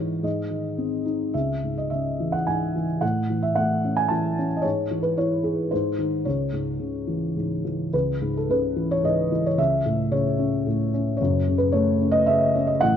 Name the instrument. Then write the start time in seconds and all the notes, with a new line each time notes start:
felt piano
Already playing: G#2 E3 C#5
0.23 G#2 D#5
0.51 D#3
0.78 C4
1.05 D#4
1.34 C#2 E5
1.64 G#2
1.78 D#5
1.90 C#3 E5
2.20 E3
2.32 F#5
2.47 G#2 G#5
2.75 E3
3.01 A2 F#5
3.30 E3
3.42 E5
3.55 A3 F#5
3.84 C#4
3.97 G#5
4.08 E3 A5
4.38 C#4
4.56 D#5
4.62 G#2 C#5
4.91 E3
5.03 B4
5.17 E4 C#5
5.44 G#4
5.71 G#2 C5
5.99 D#3
6.25 C#2 C#5
6.53 G#2
6.80 C#3
7.07 E3
7.36 G#2
7.65 E3
7.93 C#2 B4
8.21 G#2
8.37 A4
8.49 C#3 B4
8.76 E3
8.91 C#5
9.03 G#2 D#5
9.32 E3
9.46 C#5
9.57 C#2 E5
9.86 A2
10.11 C#3 C#5
10.39 C#4
10.66 A2
10.94 C#4
11.17 F#1 C#5
11.21 F#2
11.48 C#3
11.58 B4
11.72 A3 C#5
12.01 C#4
12.12 D#5
12.26 C#3 E5
12.55 C#4
12.67 D#5
12.81 A1 A2 F#5